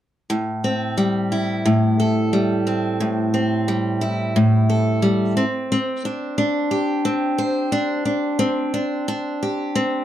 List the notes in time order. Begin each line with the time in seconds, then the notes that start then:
0.30 A2
0.64 C4
0.97 G3
1.32 E4
1.66 A2
2.00 A4
2.33 G3
2.67 C4
3.00 A2
3.34 C4
3.68 G3
4.01 E4
4.36 A2
4.70 A4
5.02 G3
5.37 C4
5.72 C4
6.05 D4
6.38 D4
6.71 G4
7.05 C4
7.38 C5
7.72 D4
8.05 D4
8.39 C4
8.74 D4
9.08 D4
9.43 G4
9.75 C4